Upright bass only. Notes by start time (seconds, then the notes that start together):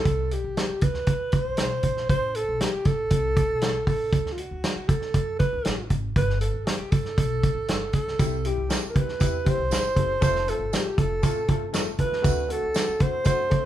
0.06 C2
0.44 C2
0.70 muted upright bass stroke
0.82 D2
1.07 E2
1.45 C2
1.58 B1
1.83 A#1
2.10 A1
2.49 B1
2.73 muted upright bass stroke
2.86 A1
3.11 C2
3.50 B1
3.87 A1
4.13 D2
4.51 D2
4.76 muted upright bass stroke
4.89 E2
5.14 F#2
5.53 D2
5.66 A1
5.90 G#1
6.16 G1
6.54 A1
6.79 muted upright bass stroke
6.92 G1
7.18 B1
7.55 A1
7.69 G1
7.93 C#2
8.19 C2
8.58 C2
8.83 muted upright bass stroke
8.96 D2
9.21 E2
9.58 C2
9.71 G1
9.96 F#1
10.22 F1
10.59 G1
10.85 muted upright bass stroke
10.98 F1
11.23 A1
11.49 G1
11.73 F1
11.99 D#2
12.25 D2
12.63 D2
12.88 muted upright bass stroke
13.01 E2
13.26 F#2